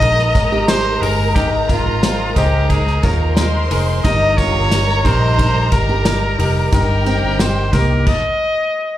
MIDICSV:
0, 0, Header, 1, 8, 480
1, 0, Start_track
1, 0, Tempo, 671141
1, 970, Time_signature, 4, 2, 24, 8
1, 6420, End_track
2, 0, Start_track
2, 0, Title_t, "Violin section"
2, 0, Program_c, 0, 48
2, 0, Note_on_c, 0, 70, 77
2, 0, Note_on_c, 0, 82, 89
2, 2383, Note_off_c, 0, 82, 0
2, 2384, Note_off_c, 0, 70, 0
2, 2413, Note_on_c, 0, 84, 86
2, 2415, Note_on_c, 0, 72, 82
2, 2882, Note_off_c, 0, 84, 0
2, 2883, Note_off_c, 0, 72, 0
2, 2897, Note_on_c, 0, 70, 88
2, 2898, Note_on_c, 0, 82, 99
2, 4785, Note_off_c, 0, 70, 0
2, 4786, Note_off_c, 0, 82, 0
2, 4809, Note_on_c, 0, 67, 91
2, 4809, Note_on_c, 0, 79, 96
2, 5751, Note_off_c, 0, 67, 0
2, 5751, Note_off_c, 0, 79, 0
2, 6420, End_track
3, 0, Start_track
3, 0, Title_t, "Trumpet"
3, 0, Program_c, 1, 56
3, 0, Note_on_c, 1, 75, 114
3, 457, Note_off_c, 1, 75, 0
3, 487, Note_on_c, 1, 72, 97
3, 726, Note_on_c, 1, 70, 94
3, 736, Note_off_c, 1, 72, 0
3, 960, Note_off_c, 1, 70, 0
3, 964, Note_on_c, 1, 67, 92
3, 1073, Note_off_c, 1, 67, 0
3, 1204, Note_on_c, 1, 65, 92
3, 1658, Note_off_c, 1, 65, 0
3, 1693, Note_on_c, 1, 67, 85
3, 1932, Note_on_c, 1, 68, 86
3, 1943, Note_off_c, 1, 67, 0
3, 2173, Note_on_c, 1, 70, 75
3, 2184, Note_off_c, 1, 68, 0
3, 2652, Note_off_c, 1, 70, 0
3, 2891, Note_on_c, 1, 75, 107
3, 3130, Note_on_c, 1, 73, 105
3, 3140, Note_off_c, 1, 75, 0
3, 3612, Note_on_c, 1, 72, 103
3, 3623, Note_off_c, 1, 73, 0
3, 4085, Note_off_c, 1, 72, 0
3, 4089, Note_on_c, 1, 70, 84
3, 4781, Note_off_c, 1, 70, 0
3, 4814, Note_on_c, 1, 70, 89
3, 5295, Note_on_c, 1, 72, 89
3, 5306, Note_off_c, 1, 70, 0
3, 5529, Note_on_c, 1, 70, 82
3, 5540, Note_off_c, 1, 72, 0
3, 5776, Note_on_c, 1, 75, 92
3, 5786, Note_off_c, 1, 70, 0
3, 6420, Note_off_c, 1, 75, 0
3, 6420, End_track
4, 0, Start_track
4, 0, Title_t, "Grand piano"
4, 0, Program_c, 2, 0
4, 0, Control_c, 2, 64, 127
4, 0, Note_on_c, 2, 44, 58
4, 0, Note_on_c, 2, 63, 94
4, 0, Note_on_c, 2, 68, 83
4, 0, Note_on_c, 2, 70, 110
4, 5, Note_off_c, 2, 63, 0
4, 5, Note_on_c, 2, 63, 64
4, 12, Note_off_c, 2, 68, 0
4, 12, Note_on_c, 2, 68, 63
4, 15, Note_off_c, 2, 70, 0
4, 15, Note_on_c, 2, 70, 81
4, 201, Note_off_c, 2, 63, 0
4, 205, Note_off_c, 2, 68, 0
4, 206, Note_off_c, 2, 70, 0
4, 248, Note_on_c, 2, 63, 69
4, 249, Note_on_c, 2, 68, 59
4, 255, Note_on_c, 2, 73, 76
4, 443, Note_off_c, 2, 63, 0
4, 444, Note_off_c, 2, 68, 0
4, 446, Note_off_c, 2, 73, 0
4, 487, Note_on_c, 2, 63, 71
4, 493, Note_on_c, 2, 68, 65
4, 497, Note_on_c, 2, 72, 76
4, 682, Note_off_c, 2, 63, 0
4, 685, Note_off_c, 2, 68, 0
4, 688, Note_off_c, 2, 72, 0
4, 732, Note_on_c, 2, 63, 98
4, 733, Note_on_c, 2, 68, 89
4, 738, Note_on_c, 2, 70, 101
4, 925, Note_off_c, 2, 63, 0
4, 925, Note_off_c, 2, 68, 0
4, 928, Note_off_c, 2, 70, 0
4, 968, Note_on_c, 2, 63, 101
4, 972, Note_off_c, 2, 44, 0
4, 972, Note_on_c, 2, 44, 66
4, 972, Note_on_c, 2, 68, 91
4, 977, Note_on_c, 2, 70, 101
4, 1163, Note_off_c, 2, 63, 0
4, 1165, Note_off_c, 2, 68, 0
4, 1167, Note_off_c, 2, 70, 0
4, 1209, Note_on_c, 2, 63, 70
4, 1217, Note_on_c, 2, 70, 74
4, 1403, Note_off_c, 2, 63, 0
4, 1408, Note_off_c, 2, 70, 0
4, 1451, Note_on_c, 2, 63, 71
4, 1455, Note_on_c, 2, 68, 65
4, 1459, Note_on_c, 2, 72, 84
4, 1644, Note_off_c, 2, 63, 0
4, 1646, Note_off_c, 2, 68, 0
4, 1649, Note_off_c, 2, 72, 0
4, 1662, Note_off_c, 2, 44, 0
4, 1688, Note_on_c, 2, 63, 98
4, 1692, Note_on_c, 2, 68, 89
4, 1698, Note_on_c, 2, 72, 109
4, 1883, Note_off_c, 2, 63, 0
4, 1885, Note_off_c, 2, 68, 0
4, 1888, Note_off_c, 2, 72, 0
4, 1930, Note_on_c, 2, 63, 73
4, 1935, Note_on_c, 2, 68, 64
4, 1940, Note_on_c, 2, 70, 76
4, 2124, Note_off_c, 2, 63, 0
4, 2127, Note_off_c, 2, 68, 0
4, 2129, Note_off_c, 2, 70, 0
4, 2172, Note_on_c, 2, 63, 67
4, 2178, Note_on_c, 2, 68, 67
4, 2181, Note_on_c, 2, 73, 74
4, 2365, Note_off_c, 2, 63, 0
4, 2368, Note_off_c, 2, 68, 0
4, 2370, Note_off_c, 2, 73, 0
4, 2413, Note_on_c, 2, 63, 77
4, 2416, Note_on_c, 2, 68, 67
4, 2422, Note_on_c, 2, 70, 76
4, 2606, Note_off_c, 2, 63, 0
4, 2608, Note_off_c, 2, 68, 0
4, 2610, Note_off_c, 2, 70, 0
4, 2652, Note_on_c, 2, 63, 95
4, 2655, Note_on_c, 2, 68, 90
4, 2658, Note_on_c, 2, 70, 108
4, 2845, Note_off_c, 2, 63, 0
4, 2847, Note_off_c, 2, 68, 0
4, 2848, Note_off_c, 2, 70, 0
4, 2891, Note_on_c, 2, 63, 102
4, 2898, Note_on_c, 2, 43, 66
4, 2898, Note_on_c, 2, 67, 91
4, 2900, Control_c, 2, 64, 0
4, 2903, Note_on_c, 2, 70, 112
4, 3039, Control_c, 2, 64, 127
4, 3085, Note_off_c, 2, 63, 0
4, 3088, Note_off_c, 2, 67, 0
4, 3091, Note_off_c, 2, 70, 0
4, 3130, Note_on_c, 2, 63, 66
4, 3135, Note_on_c, 2, 67, 67
4, 3140, Note_on_c, 2, 70, 79
4, 3325, Note_off_c, 2, 63, 0
4, 3327, Note_off_c, 2, 67, 0
4, 3330, Note_off_c, 2, 70, 0
4, 3371, Note_on_c, 2, 63, 77
4, 3374, Note_on_c, 2, 67, 72
4, 3379, Note_on_c, 2, 70, 83
4, 3565, Note_off_c, 2, 63, 0
4, 3566, Note_off_c, 2, 67, 0
4, 3569, Note_off_c, 2, 70, 0
4, 3586, Note_off_c, 2, 43, 0
4, 3607, Note_on_c, 2, 63, 106
4, 3612, Note_on_c, 2, 67, 96
4, 3619, Note_on_c, 2, 70, 119
4, 3803, Note_off_c, 2, 63, 0
4, 3805, Note_off_c, 2, 67, 0
4, 3809, Note_off_c, 2, 70, 0
4, 3843, Note_on_c, 2, 63, 73
4, 3847, Note_on_c, 2, 67, 67
4, 3853, Note_on_c, 2, 72, 83
4, 4041, Note_off_c, 2, 63, 0
4, 4043, Note_off_c, 2, 67, 0
4, 4046, Note_off_c, 2, 72, 0
4, 4088, Note_on_c, 2, 63, 71
4, 4093, Note_on_c, 2, 67, 66
4, 4099, Note_on_c, 2, 70, 77
4, 4283, Note_off_c, 2, 63, 0
4, 4286, Note_off_c, 2, 67, 0
4, 4289, Note_off_c, 2, 70, 0
4, 4326, Note_on_c, 2, 63, 78
4, 4328, Note_on_c, 2, 67, 65
4, 4332, Note_on_c, 2, 70, 80
4, 4522, Note_off_c, 2, 63, 0
4, 4524, Note_off_c, 2, 67, 0
4, 4526, Note_off_c, 2, 70, 0
4, 4565, Note_on_c, 2, 63, 89
4, 4570, Note_on_c, 2, 67, 91
4, 4573, Note_on_c, 2, 70, 101
4, 4762, Note_off_c, 2, 63, 0
4, 4765, Note_off_c, 2, 67, 0
4, 4766, Note_off_c, 2, 70, 0
4, 4808, Note_on_c, 2, 63, 98
4, 4814, Note_on_c, 2, 67, 86
4, 4815, Note_on_c, 2, 43, 69
4, 4819, Note_on_c, 2, 70, 115
4, 5004, Note_off_c, 2, 63, 0
4, 5006, Note_off_c, 2, 67, 0
4, 5009, Note_off_c, 2, 70, 0
4, 5046, Note_on_c, 2, 63, 76
4, 5052, Note_on_c, 2, 67, 62
4, 5057, Note_on_c, 2, 70, 72
4, 5242, Note_off_c, 2, 63, 0
4, 5245, Note_off_c, 2, 67, 0
4, 5248, Note_off_c, 2, 70, 0
4, 5290, Note_on_c, 2, 63, 72
4, 5294, Note_on_c, 2, 67, 65
4, 5299, Note_on_c, 2, 70, 77
4, 5484, Note_off_c, 2, 63, 0
4, 5487, Note_off_c, 2, 67, 0
4, 5489, Note_off_c, 2, 70, 0
4, 5504, Note_off_c, 2, 43, 0
4, 5527, Note_on_c, 2, 63, 94
4, 5531, Note_on_c, 2, 67, 86
4, 5536, Note_on_c, 2, 70, 110
4, 5723, Note_off_c, 2, 63, 0
4, 5725, Note_off_c, 2, 67, 0
4, 5727, Note_off_c, 2, 70, 0
4, 5781, Control_c, 2, 64, 0
4, 6420, End_track
5, 0, Start_track
5, 0, Title_t, "Steel-string acoustic guitar"
5, 0, Program_c, 3, 25
5, 10, Note_on_c, 3, 63, 77
5, 124, Note_off_c, 3, 63, 0
5, 373, Note_on_c, 3, 67, 81
5, 599, Note_off_c, 3, 67, 0
5, 972, Note_on_c, 3, 63, 88
5, 1199, Note_off_c, 3, 63, 0
5, 1211, Note_on_c, 3, 65, 80
5, 1439, Note_off_c, 3, 65, 0
5, 1695, Note_on_c, 3, 63, 85
5, 1920, Note_off_c, 3, 63, 0
5, 2176, Note_on_c, 3, 65, 67
5, 2512, Note_off_c, 3, 65, 0
5, 2894, Note_on_c, 3, 63, 99
5, 3120, Note_off_c, 3, 63, 0
5, 3134, Note_on_c, 3, 65, 80
5, 3360, Note_off_c, 3, 65, 0
5, 3615, Note_on_c, 3, 63, 82
5, 3841, Note_off_c, 3, 63, 0
5, 3851, Note_on_c, 3, 63, 78
5, 3965, Note_off_c, 3, 63, 0
5, 4214, Note_on_c, 3, 67, 80
5, 4440, Note_off_c, 3, 67, 0
5, 4815, Note_on_c, 3, 63, 82
5, 5041, Note_off_c, 3, 63, 0
5, 5053, Note_on_c, 3, 60, 82
5, 5280, Note_off_c, 3, 60, 0
5, 5532, Note_on_c, 3, 58, 79
5, 5760, Note_off_c, 3, 58, 0
5, 6420, End_track
6, 0, Start_track
6, 0, Title_t, "Analog synth pad"
6, 0, Program_c, 4, 89
6, 0, Note_on_c, 4, 56, 77
6, 0, Note_on_c, 4, 63, 73
6, 0, Note_on_c, 4, 70, 90
6, 2860, Note_off_c, 4, 56, 0
6, 2888, Note_on_c, 4, 55, 85
6, 5739, Note_off_c, 4, 63, 0
6, 5741, Note_off_c, 4, 55, 0
6, 5741, Note_off_c, 4, 70, 0
6, 6420, End_track
7, 0, Start_track
7, 0, Title_t, "Fingered electric bass"
7, 0, Program_c, 5, 33
7, 0, Note_on_c, 5, 34, 83
7, 221, Note_off_c, 5, 34, 0
7, 252, Note_on_c, 5, 32, 97
7, 702, Note_off_c, 5, 32, 0
7, 729, Note_on_c, 5, 31, 96
7, 952, Note_off_c, 5, 31, 0
7, 973, Note_on_c, 5, 32, 99
7, 1306, Note_off_c, 5, 32, 0
7, 1328, Note_on_c, 5, 32, 98
7, 1664, Note_off_c, 5, 32, 0
7, 1691, Note_on_c, 5, 37, 78
7, 2142, Note_off_c, 5, 37, 0
7, 2171, Note_on_c, 5, 39, 91
7, 2622, Note_off_c, 5, 39, 0
7, 2651, Note_on_c, 5, 29, 91
7, 2874, Note_off_c, 5, 29, 0
7, 2892, Note_on_c, 5, 31, 107
7, 3226, Note_off_c, 5, 31, 0
7, 3252, Note_on_c, 5, 31, 98
7, 3586, Note_off_c, 5, 31, 0
7, 3614, Note_on_c, 5, 34, 83
7, 4064, Note_off_c, 5, 34, 0
7, 4092, Note_on_c, 5, 31, 90
7, 4543, Note_off_c, 5, 31, 0
7, 4570, Note_on_c, 5, 29, 89
7, 4794, Note_off_c, 5, 29, 0
7, 4812, Note_on_c, 5, 31, 102
7, 5146, Note_off_c, 5, 31, 0
7, 5171, Note_on_c, 5, 31, 91
7, 5506, Note_off_c, 5, 31, 0
7, 5528, Note_on_c, 5, 36, 92
7, 5752, Note_off_c, 5, 36, 0
7, 6420, End_track
8, 0, Start_track
8, 0, Title_t, "Drums"
8, 11, Note_on_c, 9, 36, 83
8, 12, Note_on_c, 9, 54, 30
8, 16, Note_on_c, 9, 51, 60
8, 83, Note_off_c, 9, 36, 0
8, 83, Note_off_c, 9, 54, 0
8, 87, Note_off_c, 9, 51, 0
8, 135, Note_on_c, 9, 38, 31
8, 207, Note_off_c, 9, 38, 0
8, 251, Note_on_c, 9, 36, 94
8, 251, Note_on_c, 9, 51, 54
8, 256, Note_on_c, 9, 54, 46
8, 322, Note_off_c, 9, 36, 0
8, 323, Note_off_c, 9, 51, 0
8, 328, Note_off_c, 9, 54, 0
8, 488, Note_on_c, 9, 38, 119
8, 489, Note_on_c, 9, 54, 84
8, 491, Note_on_c, 9, 51, 72
8, 560, Note_off_c, 9, 38, 0
8, 560, Note_off_c, 9, 54, 0
8, 562, Note_off_c, 9, 51, 0
8, 735, Note_on_c, 9, 46, 75
8, 735, Note_on_c, 9, 51, 61
8, 737, Note_on_c, 9, 54, 33
8, 806, Note_off_c, 9, 46, 0
8, 806, Note_off_c, 9, 51, 0
8, 808, Note_off_c, 9, 54, 0
8, 971, Note_on_c, 9, 36, 112
8, 971, Note_on_c, 9, 44, 63
8, 971, Note_on_c, 9, 51, 75
8, 974, Note_on_c, 9, 54, 49
8, 1042, Note_off_c, 9, 44, 0
8, 1042, Note_off_c, 9, 51, 0
8, 1043, Note_off_c, 9, 36, 0
8, 1046, Note_off_c, 9, 54, 0
8, 1211, Note_on_c, 9, 36, 95
8, 1212, Note_on_c, 9, 54, 51
8, 1213, Note_on_c, 9, 51, 48
8, 1283, Note_off_c, 9, 36, 0
8, 1284, Note_off_c, 9, 54, 0
8, 1285, Note_off_c, 9, 51, 0
8, 1451, Note_on_c, 9, 38, 110
8, 1454, Note_on_c, 9, 54, 88
8, 1455, Note_on_c, 9, 51, 75
8, 1523, Note_off_c, 9, 38, 0
8, 1525, Note_off_c, 9, 54, 0
8, 1526, Note_off_c, 9, 51, 0
8, 1690, Note_on_c, 9, 36, 98
8, 1690, Note_on_c, 9, 51, 64
8, 1694, Note_on_c, 9, 54, 53
8, 1761, Note_off_c, 9, 36, 0
8, 1761, Note_off_c, 9, 51, 0
8, 1766, Note_off_c, 9, 54, 0
8, 1930, Note_on_c, 9, 51, 58
8, 1931, Note_on_c, 9, 36, 80
8, 1939, Note_on_c, 9, 54, 30
8, 2002, Note_off_c, 9, 36, 0
8, 2002, Note_off_c, 9, 51, 0
8, 2010, Note_off_c, 9, 54, 0
8, 2052, Note_on_c, 9, 38, 29
8, 2124, Note_off_c, 9, 38, 0
8, 2168, Note_on_c, 9, 51, 57
8, 2171, Note_on_c, 9, 36, 95
8, 2176, Note_on_c, 9, 54, 46
8, 2240, Note_off_c, 9, 51, 0
8, 2243, Note_off_c, 9, 36, 0
8, 2248, Note_off_c, 9, 54, 0
8, 2408, Note_on_c, 9, 38, 113
8, 2410, Note_on_c, 9, 51, 73
8, 2416, Note_on_c, 9, 54, 86
8, 2479, Note_off_c, 9, 38, 0
8, 2482, Note_off_c, 9, 51, 0
8, 2487, Note_off_c, 9, 54, 0
8, 2652, Note_on_c, 9, 46, 81
8, 2652, Note_on_c, 9, 51, 64
8, 2657, Note_on_c, 9, 54, 32
8, 2724, Note_off_c, 9, 46, 0
8, 2724, Note_off_c, 9, 51, 0
8, 2729, Note_off_c, 9, 54, 0
8, 2893, Note_on_c, 9, 36, 109
8, 2894, Note_on_c, 9, 44, 59
8, 2894, Note_on_c, 9, 51, 78
8, 2898, Note_on_c, 9, 54, 50
8, 2965, Note_off_c, 9, 36, 0
8, 2965, Note_off_c, 9, 44, 0
8, 2965, Note_off_c, 9, 51, 0
8, 2969, Note_off_c, 9, 54, 0
8, 3133, Note_on_c, 9, 36, 85
8, 3135, Note_on_c, 9, 51, 46
8, 3135, Note_on_c, 9, 54, 47
8, 3205, Note_off_c, 9, 36, 0
8, 3206, Note_off_c, 9, 54, 0
8, 3207, Note_off_c, 9, 51, 0
8, 3372, Note_on_c, 9, 38, 99
8, 3373, Note_on_c, 9, 54, 87
8, 3376, Note_on_c, 9, 51, 77
8, 3444, Note_off_c, 9, 38, 0
8, 3444, Note_off_c, 9, 54, 0
8, 3447, Note_off_c, 9, 51, 0
8, 3612, Note_on_c, 9, 36, 89
8, 3615, Note_on_c, 9, 51, 68
8, 3616, Note_on_c, 9, 54, 50
8, 3683, Note_off_c, 9, 36, 0
8, 3686, Note_off_c, 9, 51, 0
8, 3688, Note_off_c, 9, 54, 0
8, 3852, Note_on_c, 9, 36, 81
8, 3854, Note_on_c, 9, 54, 31
8, 3855, Note_on_c, 9, 51, 66
8, 3924, Note_off_c, 9, 36, 0
8, 3925, Note_off_c, 9, 54, 0
8, 3927, Note_off_c, 9, 51, 0
8, 4089, Note_on_c, 9, 51, 58
8, 4092, Note_on_c, 9, 36, 93
8, 4096, Note_on_c, 9, 54, 44
8, 4161, Note_off_c, 9, 51, 0
8, 4163, Note_off_c, 9, 36, 0
8, 4168, Note_off_c, 9, 54, 0
8, 4329, Note_on_c, 9, 38, 109
8, 4330, Note_on_c, 9, 54, 81
8, 4331, Note_on_c, 9, 51, 74
8, 4400, Note_off_c, 9, 38, 0
8, 4401, Note_off_c, 9, 54, 0
8, 4402, Note_off_c, 9, 51, 0
8, 4574, Note_on_c, 9, 46, 77
8, 4574, Note_on_c, 9, 51, 62
8, 4645, Note_off_c, 9, 46, 0
8, 4645, Note_off_c, 9, 51, 0
8, 4809, Note_on_c, 9, 44, 62
8, 4809, Note_on_c, 9, 51, 77
8, 4811, Note_on_c, 9, 36, 113
8, 4816, Note_on_c, 9, 54, 49
8, 4880, Note_off_c, 9, 44, 0
8, 4880, Note_off_c, 9, 51, 0
8, 4882, Note_off_c, 9, 36, 0
8, 4888, Note_off_c, 9, 54, 0
8, 5051, Note_on_c, 9, 51, 45
8, 5055, Note_on_c, 9, 54, 50
8, 5122, Note_off_c, 9, 51, 0
8, 5126, Note_off_c, 9, 54, 0
8, 5289, Note_on_c, 9, 38, 106
8, 5292, Note_on_c, 9, 51, 78
8, 5297, Note_on_c, 9, 54, 89
8, 5360, Note_off_c, 9, 38, 0
8, 5363, Note_off_c, 9, 51, 0
8, 5368, Note_off_c, 9, 54, 0
8, 5529, Note_on_c, 9, 36, 90
8, 5529, Note_on_c, 9, 51, 65
8, 5537, Note_on_c, 9, 54, 51
8, 5600, Note_off_c, 9, 36, 0
8, 5601, Note_off_c, 9, 51, 0
8, 5608, Note_off_c, 9, 54, 0
8, 5768, Note_on_c, 9, 49, 83
8, 5770, Note_on_c, 9, 36, 104
8, 5840, Note_off_c, 9, 49, 0
8, 5842, Note_off_c, 9, 36, 0
8, 6420, End_track
0, 0, End_of_file